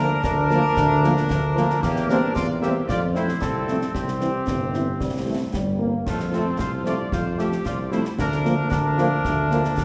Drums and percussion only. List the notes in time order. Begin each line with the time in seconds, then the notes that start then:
0.24 concert bass drum, snare
0.50 snare
0.77 concert bass drum, snare
1.04 snare
1.17 snare
1.30 concert bass drum, snare
1.57 snare
1.70 snare
1.83 concert bass drum, snare, crash
1.96 snare
2.10 snare
2.36 concert bass drum, snare
2.63 snare
2.89 concert bass drum, snare
3.15 snare
3.29 snare
3.42 concert bass drum, snare
3.68 snare
3.82 snare
3.95 concert bass drum, snare
4.08 snare
4.21 snare
4.47 concert bass drum, snare
4.74 snare
5.00 concert bass drum, snare
5.54 concert bass drum, snare
6.07 concert bass drum, snare, crash
6.20 snare
6.33 snare
6.59 concert bass drum, snare
6.86 snare
7.12 concert bass drum, snare
7.39 snare
7.52 snare
7.65 concert bass drum, snare
7.92 snare
8.05 snare
8.19 concert bass drum, snare
8.32 snare
8.45 snare
8.71 concert bass drum, snare
8.98 snare
9.25 concert bass drum, snare
9.51 snare
9.64 snare
9.78 concert bass drum, snare